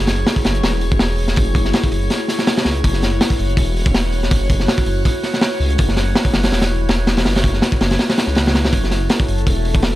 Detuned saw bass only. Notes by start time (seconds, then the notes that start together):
Already playing: F#1
0.45 F#1
0.63 E1
1.37 F#1
1.92 F#1
2.66 C#2
2.84 F#1
3.39 F#1
3.57 E1
4.31 F#1
4.86 F#1
5.60 C#2
5.79 F#1
6.34 F#1
6.52 E1
7.26 F#1
7.81 F#1
8.27 C#2
8.73 F#1
9.28 F#1
9.47 E1